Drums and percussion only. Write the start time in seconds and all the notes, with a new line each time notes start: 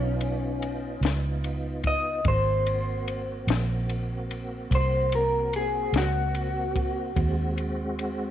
0.21 ride
0.62 ride
1.03 snare, ride
1.44 ride
1.84 kick, ride
2.25 kick, ride
2.67 ride
3.08 ride
3.48 snare, ride
3.89 ride
4.31 ride
4.71 kick, ride
5.12 ride
5.53 ride
5.94 snare, ride
6.35 ride
6.76 kick, ride
7.16 kick, ride
7.58 ride
7.99 ride